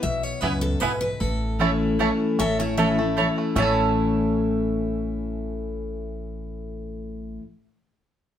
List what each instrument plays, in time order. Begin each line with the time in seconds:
0.02 upright bass B1, steel-string acoustic guitar B2 E5
0.23 steel-string acoustic guitar C#5
0.41 upright bass C#2, steel-string acoustic guitar F#2 B4, mandolin B3 E4 B4 G#5, five-string banjo B3 E4
0.61 steel-string acoustic guitar A4
0.80 upright bass B1, steel-string acoustic guitar G#2 B4, mandolin B3 E4 B4 G#5, five-string banjo B3 E4
1.01 steel-string acoustic guitar B4
1.20 upright bass A1, steel-string acoustic guitar A2 A4
1.59 steel-string acoustic guitar E3 A3 C#4 E4, mandolin A3 E4 C#5 A5, five-string banjo A3 C#4 E4
1.99 steel-string acoustic guitar E3 A3 C#4 E4, mandolin A3 E4 C#5 A5, five-string banjo A3 C#4 E4
2.39 upright bass A1, steel-string acoustic guitar A2 E5, five-string banjo C#4, resonator guitar played with a steel bar A4
2.59 five-string banjo A3, resonator guitar played with a steel bar E4, steel-string acoustic guitar C#5
2.77 steel-string acoustic guitar E3 A3 C#4 E4 E5, mandolin A3 E4 C#5 A5, five-string banjo E4, resonator guitar played with a steel bar A4
2.98 five-string banjo A3, steel-string acoustic guitar C#4 E4
3.17 steel-string acoustic guitar E3 A3 C#4 E4, mandolin A3 E4 C#5 A5, five-string banjo E4
3.38 five-string banjo A3
3.56 upright bass A1, steel-string acoustic guitar A2 E3 A3 C#4 A5, mandolin A3 E4 C#5 A5, five-string banjo A3 C#4, resonator guitar played with a steel bar C#4
3.60 steel-string acoustic guitar E4, five-string banjo E4 A4